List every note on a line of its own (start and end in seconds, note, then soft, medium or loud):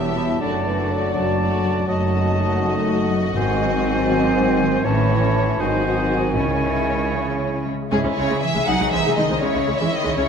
0.00 0.32 E1 soft
0.00 0.32 E2 soft
0.00 0.43 E2 soft
0.00 0.14 B2 soft
0.00 0.41 F#3 soft
0.00 0.38 G3 soft
0.00 0.17 B3 soft
0.00 0.40 B3 soft
0.00 0.43 B3 soft
0.00 0.41 E4 soft
0.00 0.40 G4 soft
0.00 0.43 G4 soft
0.00 0.43 B4 soft
0.00 0.40 E5 soft
0.00 1.15 A5 soft
0.15 0.43 B2 soft
0.15 0.42 E4 soft
0.40 1.06 F#1 soft
0.40 1.87 F#2 soft
0.40 1.06 F#2 medium
0.40 0.68 F#3 soft
0.40 0.63 A3 soft
0.40 1.72 A3 soft
0.40 1.72 D4 soft
0.40 1.15 D4 soft
0.40 0.63 F#4 soft
0.40 1.13 D5 soft
0.40 0.64 D5 soft
0.65 0.91 E3 soft
0.65 1.37 A3 soft
0.65 1.37 F#4 soft
0.65 2.12 A4 soft
0.65 1.38 D5 soft
0.90 1.14 F#3 soft
0.90 1.90 D4 soft
1.14 1.80 F#1 medium
1.14 1.80 F#2 medium
1.14 1.62 F#3 soft
1.14 1.87 F#3 soft
1.14 1.88 F#4 soft
1.14 1.87 D5 soft
1.14 1.87 A5 soft
1.38 1.87 A3 soft
1.38 2.86 F#4 soft
1.38 1.87 F#4 soft
1.38 1.88 D5 soft
1.63 2.61 F#3 soft
1.88 3.32 F#1 medium
1.88 3.32 F#2 medium
1.88 3.38 F#2 soft
1.88 3.19 F#3 medium
1.88 3.32 A3 medium
1.88 3.32 D#4 medium
1.88 4.80 F#4 medium
1.88 4.68 F#4 soft
1.88 3.32 D#5 medium
1.88 4.81 D#5 soft
1.88 3.10 A5 soft
2.13 3.38 A4 soft
2.38 3.84 D#4 soft
2.62 3.09 F#3 soft
2.87 4.33 F#4 soft
3.10 4.86 F#3 soft
3.34 4.82 G#1 medium
3.34 4.06 G#2 medium
3.34 4.82 G#2 medium
3.34 4.87 G#2 soft
3.34 4.87 D#3 medium
3.34 4.80 F#3 medium
3.34 4.80 C4 medium
3.34 4.87 C5 medium
3.34 4.82 G#5 medium
3.60 4.87 C5 soft
3.85 4.87 D#4 soft
4.09 4.59 D#3 soft
4.35 4.87 F#4 soft
4.60 4.87 D#3 soft
4.84 5.59 A1 medium
4.84 5.62 A2 medium
4.84 5.59 A2 medium
4.84 5.56 E3 medium
4.84 5.62 E3 medium
4.84 5.56 C#4 medium
4.84 5.57 C#4 medium
4.84 5.62 E4 medium
4.84 5.56 E4 medium
4.84 5.62 C#5 medium
4.84 5.57 C#5 medium
4.84 5.62 A5 medium
5.09 5.62 C#4 soft
5.35 5.62 E4 soft
5.35 5.62 C#5 soft
5.60 6.36 G#1 medium
5.60 6.39 G#2 medium
5.60 6.36 G#2 medium
5.60 7.16 D#3 medium
5.60 6.33 F#3 medium
5.60 6.33 C4 medium
5.60 6.33 D#4 soft
5.60 6.37 F#4 soft
5.60 6.34 F#4 soft
5.60 6.33 C5 soft
5.60 6.21 C5 medium
5.60 7.66 G#5 medium
5.86 6.39 C4 soft
6.11 6.39 F#4 soft
6.11 6.39 D#5 soft
6.37 7.71 C#2 medium
6.37 7.71 C#3 medium
6.37 7.72 C#3 soft
6.37 7.62 E3 medium
6.37 7.62 C#4 medium
6.37 7.67 C#4 medium
6.37 7.67 E4 medium
6.37 7.64 E4 soft
6.37 7.67 C#5 soft
6.37 7.64 C#5 medium
6.64 7.85 E5 soft
6.89 7.76 C#4 soft
7.15 7.66 C#3 soft
7.15 7.64 G#3 soft
7.40 7.81 G#4 soft
7.66 10.29 G#3 soft
7.73 8.60 C#3 soft
7.77 8.62 C#4 soft
7.82 8.57 G#4 soft
7.87 8.67 E5 soft
7.91 7.97 C#2 medium
7.91 8.15 G#2 medium
7.91 7.97 G#3 medium
7.91 7.96 C#4 medium
7.91 8.63 E4 medium
7.91 8.00 G#4 medium
7.91 9.39 G#4 medium
8.04 8.10 C#2 soft
8.04 8.09 G#3 soft
8.04 8.09 C#4 soft
8.17 8.22 C#2 soft
8.17 8.41 C#3 medium
8.17 8.22 G#3 soft
8.17 8.41 C#5 medium
8.29 8.34 C#2 medium
8.29 8.35 G#3 medium
8.29 8.35 C#4 medium
8.41 8.50 E3 medium
8.41 8.66 E5 medium
8.49 9.35 C3 soft
8.53 8.60 C#2 soft
8.53 8.60 G#3 soft
8.53 9.37 D#4 soft
8.58 9.32 G#4 soft
8.63 9.42 D#5 soft
8.63 8.92 F#5 medium
8.67 8.73 C2 medium
8.67 8.92 F#3 medium
8.67 8.72 G#3 medium
8.67 8.72 D#4 medium
8.67 9.43 D#4 soft
8.80 8.85 C2 soft
8.80 8.85 G#3 soft
8.80 8.85 D#4 soft
8.91 8.98 C2 soft
8.91 9.17 E3 medium
8.91 8.98 G#3 soft
8.91 8.98 C4 soft
8.91 9.16 E5 medium
9.05 9.10 C2 medium
9.05 9.10 G#3 medium
9.05 9.10 D#4 medium
9.16 9.23 C2 soft
9.16 9.42 D#3 medium
9.16 9.22 G#3 soft
9.16 9.22 D#4 soft
9.16 9.41 D#5 medium
9.24 10.29 C#3 soft
9.29 9.35 C2 soft
9.29 9.35 G#3 soft
9.29 9.34 C4 medium
9.29 10.29 E4 soft
9.33 10.29 G#4 soft
9.38 9.47 G#3 medium
9.38 10.29 C#5 soft
9.38 9.79 C#5 medium
9.42 9.47 C#2 medium
9.42 9.80 C#3 medium
9.42 9.47 C#4 medium
9.42 10.29 E4 medium
9.42 10.29 C#5 medium
9.54 9.60 C#2 soft
9.54 9.59 G#3 soft
9.54 9.59 C#4 soft
9.67 9.73 C#2 soft
9.67 9.73 G#3 soft
9.79 9.85 C#2 medium
9.79 9.92 E3 medium
9.79 9.85 G#3 medium
9.79 9.85 C#4 medium
9.79 9.92 E5 medium
9.92 10.17 D#3 medium
9.92 10.17 D#5 medium
10.04 10.11 C#2 soft
10.04 10.10 G#3 soft
10.17 10.22 C#2 medium
10.17 10.29 C#3 medium
10.17 10.22 G#3 medium
10.17 10.22 C#4 medium
10.17 10.29 C#5 medium